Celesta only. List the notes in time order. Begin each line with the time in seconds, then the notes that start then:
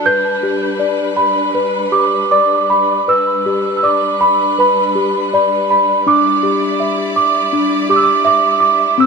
0.06 B4 G6
0.43 G4
0.79 D5
1.17 B5
1.54 B4
1.92 G4 D6
2.31 D5 D6
2.70 B5
3.08 B4 E6
3.46 G4
3.77 E6
3.83 D5 D6
4.21 B5
4.59 B4 B5
4.95 G4
5.34 D5 B5
5.70 B5
6.07 D4 D6
6.43 G4
6.80 E5
7.16 D6
7.53 D4
7.89 G4 D6
7.96 E6
8.04 D6
8.25 E5 D6
8.60 D6
8.98 C4 E6